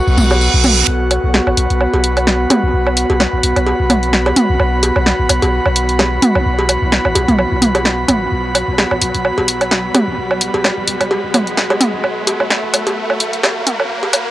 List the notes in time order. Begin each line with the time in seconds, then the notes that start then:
Already playing: B3 F#4 A4 F#5 C#6, reverse cymbal
0.07 B1, tambourine
0.17 B1, mid tom, tambourine
0.30 tambourine, cowbell, low woodblock
0.41 tambourine
0.54 B1, tambourine
0.64 mid tom, tambourine, low woodblock
0.77 tambourine
0.87 B1, riser
1.11 B5, closed hi-hat, low woodblock
1.24 B1
1.34 snare, cowbell
1.47 A1, low woodblock
1.57 B1, closed hi-hat
1.70 B1, closed hi-hat
1.81 low woodblock
1.94 B1, cowbell
2.04 closed hi-hat
2.17 closed hi-hat, low woodblock
2.27 snare
2.50 closed hi-hat, mid tom, cowbell, low woodblock
2.63 B1
2.73 B1
2.87 low woodblock
2.97 closed hi-hat
3.10 B1, cowbell
3.20 snare, low woodblock
3.33 A1
3.43 B1, closed hi-hat
3.56 B1, closed hi-hat, low woodblock
3.67 cowbell
3.80 B1
3.90 closed hi-hat, mid tom, low woodblock
4.03 closed hi-hat
4.13 snare
4.26 cowbell, low woodblock
4.36 closed hi-hat, mid tom
4.49 B1
4.60 B1, low woodblock
4.83 closed hi-hat, cowbell
4.96 B1, low woodblock
5.06 snare
5.19 A1
5.29 B1, closed hi-hat, low woodblock
5.42 B1, closed hi-hat, cowbell
5.66 B1, low woodblock
5.76 closed hi-hat
5.89 closed hi-hat
5.99 snare, cowbell, low woodblock
6.22 closed hi-hat, mid tom
6.35 B1, low woodblock
6.46 B1
6.59 cowbell
6.69 closed hi-hat, low woodblock
6.82 B1
6.92 snare
7.05 A1, low woodblock
7.15 B1, closed hi-hat, cowbell
7.28 B1, closed hi-hat, mid tom
7.39 low woodblock
7.52 B1
7.62 closed hi-hat, mid tom
7.75 closed hi-hat, cowbell, low woodblock
7.85 snare
8.08 A1, closed hi-hat, mid tom, low woodblock
8.32 B1
8.55 closed hi-hat, low woodblock
8.68 B1
8.78 snare, cowbell
8.91 A1, low woodblock
9.01 B1, closed hi-hat
9.14 B1, closed hi-hat
9.25 low woodblock
9.38 B1, cowbell
9.48 closed hi-hat
9.61 closed hi-hat, low woodblock
9.71 snare
9.95 closed hi-hat, mid tom, cowbell, low woodblock
10.07 B1
10.18 B1
10.31 low woodblock
10.41 closed hi-hat
10.54 B1, cowbell
10.64 snare, low woodblock
10.77 A1
10.87 B1, closed hi-hat
11.00 B1, closed hi-hat, low woodblock
11.11 cowbell
11.24 B1
11.34 closed hi-hat, mid tom, low woodblock
11.47 closed hi-hat
11.57 snare
11.70 cowbell, low woodblock
11.81 closed hi-hat, mid tom
11.94 B1
12.04 B1, low woodblock
12.27 closed hi-hat, cowbell
12.40 B1, low woodblock
12.50 snare
12.63 A1
12.74 B1, closed hi-hat, low woodblock
12.87 B1, closed hi-hat, cowbell
13.10 B1, low woodblock
13.20 closed hi-hat
13.33 closed hi-hat
13.43 snare, cowbell, low woodblock
13.67 closed hi-hat, mid tom
13.80 B1, low woodblock
13.90 B1
14.03 cowbell
14.13 closed hi-hat, low woodblock
14.26 B1